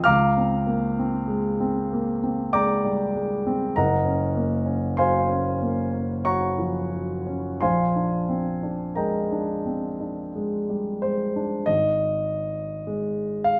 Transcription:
0.04 3.71 C#2 medium
0.04 2.49 F5 medium
0.04 2.49 A#5 medium
0.04 2.49 D6 medium
0.04 2.52 F6 medium
0.37 0.86 C4 soft
0.66 1.16 A#3 soft
0.99 1.48 C4 soft
1.28 1.78 G#3 soft
1.60 2.10 C4 soft
1.93 2.42 A#3 soft
2.23 2.72 C4 soft
2.53 3.02 G#3 soft
2.53 3.71 D5 medium
2.53 3.71 G5 medium
2.53 3.71 A#5 medium
2.53 3.75 D6 medium
2.85 3.15 G3 soft
3.15 3.63 G#3 soft
3.47 3.76 C4 soft
3.76 7.58 F#1 soft
3.76 4.94 A#4 soft
3.76 4.94 D#5 medium
3.76 4.94 F#5 medium
3.76 4.98 A#5 medium
4.05 4.54 C#4 soft
4.36 4.85 A#3 soft
4.66 5.16 C#4 soft
4.97 5.48 F#3 soft
4.97 6.21 C5 medium
4.97 6.21 F5 medium
4.97 6.21 G#5 soft
4.97 6.24 C6 medium
5.29 5.80 C#4 soft
5.62 6.12 A#3 soft
5.93 6.45 C#4 soft
6.25 6.78 F#3 soft
6.25 7.58 C#5 soft
6.25 7.58 F#5 medium
6.25 7.58 A#5 soft
6.25 7.62 C#6 medium
6.58 6.92 F3 soft
6.94 7.48 F#3 soft
7.27 7.62 C#4 soft
7.61 11.64 A#1 soft
7.61 8.95 C5 soft
7.61 8.95 F5 medium
7.61 8.95 G#5 soft
7.61 8.98 C6 medium
7.96 8.51 D4 soft
8.29 8.84 C4 soft
8.63 9.18 D4 soft
8.96 9.52 G#3 soft
8.96 10.29 A#4 soft
8.96 10.29 D#5 soft
8.96 10.29 G5 soft
8.96 10.32 A#5 soft
9.32 9.86 D4 soft
9.66 10.20 C4 soft
10.01 10.55 D4 soft
10.36 10.90 G#3 soft
10.69 11.03 G3 soft
11.02 11.56 G#3 soft
11.02 11.67 C5 medium
11.36 11.67 D4 soft
11.66 13.60 G#1 soft
11.66 13.44 D#5 medium
12.87 13.60 G#3 soft
13.44 13.60 F5 medium

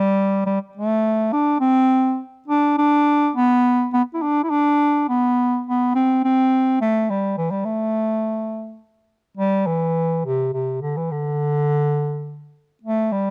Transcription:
0.00 0.43 G3 loud
0.46 0.59 G3 medium
0.77 1.34 A3 loud
1.32 1.60 D4 loud
1.60 2.21 C4 loud
2.48 2.74 D4 loud
2.78 3.30 D4 loud
3.36 3.88 B3 loud
3.93 4.02 B3 medium
4.14 4.24 E4 medium
4.22 4.43 D4 loud
4.43 4.52 E4 medium
4.50 5.07 D4 loud
5.09 5.61 B3 loud
5.67 5.92 B3 medium
5.95 6.20 C4 loud
6.24 6.76 C4 loud
6.81 7.11 A3 loud
7.10 7.37 G3 medium
7.38 7.52 E3 medium
7.51 7.66 G3 medium
7.65 8.80 A3 medium
9.37 9.68 G3 medium
9.67 10.24 E3 medium
10.25 10.51 C3 medium
10.53 10.80 C3 medium
10.82 10.98 D3 medium
10.97 11.13 E3 medium
11.11 12.55 D3 medium
12.83 13.14 A3 loud
13.12 13.30 G3 medium

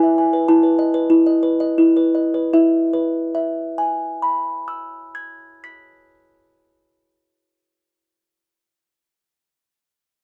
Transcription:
0.00 0.47 E4 medium
0.00 0.27 E5 soft
0.00 0.17 G#5 medium
0.18 0.42 G#5 medium
0.33 0.48 B4 soft
0.48 1.09 E4 medium
0.48 2.12 A5 medium
0.63 0.88 B4 soft
0.79 1.04 D#5 medium
0.94 1.20 B4 medium
1.10 1.77 E4 medium
1.26 1.54 D#5 soft
1.43 1.71 B4 soft
1.60 1.89 D#5 soft
1.78 2.52 E4 soft
1.97 2.27 B4 soft
2.15 2.46 D#5 soft
2.34 2.54 B4 soft
2.53 5.72 E4 medium
2.53 3.33 E5 soft
2.93 6.13 B4 soft
3.35 6.54 E5 soft
3.78 6.97 G#5 soft
4.22 7.41 B5 soft
4.68 7.87 E6 soft
5.15 8.34 G#6 soft
5.64 8.65 B6 soft

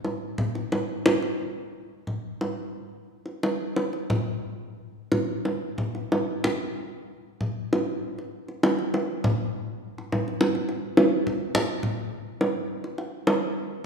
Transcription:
0.04 kendang high soft
0.38 kendang low medium
0.55 kendang slap soft
0.72 kendang high soft
1.06 kendang high soft
1.06 kendang low medium
1.22 kendang slap soft
2.07 kendang low soft
2.41 kendang high soft
3.26 kendang slap soft
3.43 kendang high medium
3.76 kendang high soft
3.93 kendang slap soft
4.10 kendang low medium
5.12 kendang high soft
5.12 kendang low soft
5.45 kendang high soft
5.78 kendang low soft
5.95 kendang slap soft
6.12 kendang high soft
6.44 kendang high soft
6.44 kendang low medium
7.41 kendang low soft
7.73 kendang high soft
8.19 kendang slap soft
8.48 kendang slap soft
8.63 kendang high medium
8.79 kendang slap soft
8.94 kendang high soft
9.24 kendang low medium
9.98 kendang slap soft
10.12 kendang high soft
10.12 kendang low soft
10.28 kendang slap soft
10.41 kendang high soft
10.55 kendang slap soft
10.69 kendang slap soft
10.97 kendang slap soft
10.97 kendang high medium
11.27 kendang low soft
11.55 kendang low medium
11.83 kendang low medium
12.41 kendang high medium
12.84 kendang slap soft
12.98 kendang slap soft
13.27 kendang slap soft
13.27 kendang high medium

